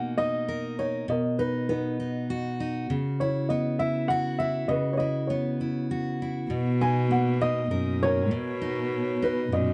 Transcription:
Already playing: B2 A#3 D#4 F#4 F#5
0.18 D#4 D#5
0.48 A#4
0.79 D#4 C#5
1.08 B2 A#4 D#5
1.39 D#4 B4
1.69 B3 D#4 B4
2.00 D#4
2.30 F#4
2.60 D#4
2.90 C#3
3.20 E4 C#5
3.49 B3 D#5
3.79 E4 E5
4.08 F#4 F#5
4.39 E4 E5
4.68 C#3 B4 D#5
4.93 C#5
4.97 E4 D#5
5.27 B3 C#5
5.61 E4
5.91 F#4
6.22 E4
6.50 B2
6.81 D#4 G#5
7.11 A#3 F#5
7.41 D#4 D#5
7.71 F#2 A#4
8.03 D#4 A#4 C#5
8.31 B2
8.62 D#4
9.22 D#4 B4
9.52 F#2 A#2 D#5

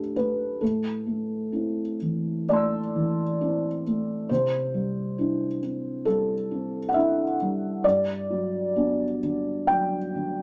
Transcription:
Already playing: A2 A3 D4 G4 A4
0.16 A3 B4
0.61 A2 A4
1.06 A3
1.52 C4 E4
2.02 E3
2.49 A3 D5 A5
2.53 C6 E6
2.96 E3
3.41 C4 E4
3.87 A3
4.29 C3 C5
4.74 G3
5.18 D4 E4
5.63 C4
6.05 G3 A4
6.51 C4
6.89 F#5
6.94 D4 E4 E5
7.42 G3
7.84 G2 D5
8.30 F#3
8.76 B3 D4
9.23 D3
9.67 F#3 G5
10.15 D3

